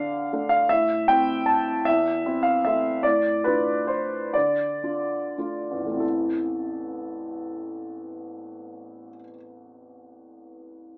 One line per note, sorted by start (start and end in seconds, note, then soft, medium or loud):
0.00 0.73 D3 soft
0.00 0.28 D4 soft
0.00 0.31 F5 medium
0.33 0.67 A3 soft
0.33 0.68 D4 soft
0.49 0.69 F5 medium
0.69 1.07 A2 soft
0.69 1.08 E5 medium
1.08 1.83 C4 soft
1.08 1.83 E4 soft
1.08 1.48 G5 medium
1.46 1.85 A5 medium
1.85 2.25 E2 soft
1.85 2.45 E5 medium
2.26 2.61 C4 soft
2.26 2.62 E4 soft
2.43 2.64 F5 medium
2.65 3.01 A3 soft
2.65 3.01 C4 soft
2.65 3.02 E4 soft
2.65 3.04 E5 medium
3.03 3.44 A2 soft
3.03 3.44 D5 medium
3.44 4.31 D4 soft
3.44 4.32 F4 soft
3.44 3.88 B4 medium
3.87 4.34 C5 soft
4.34 4.82 D3 soft
4.34 5.37 D5 medium
4.84 5.34 D4 soft
4.84 5.35 F4 soft
5.38 5.85 A3 soft
5.38 5.98 D4 soft
5.38 5.98 F4 soft
5.71 9.08 A1 soft
5.76 9.13 E2 soft
5.82 9.19 E3 soft
5.87 9.23 A3 soft
5.92 9.29 C4 soft
5.97 9.34 E4 soft
5.97 9.37 A4 soft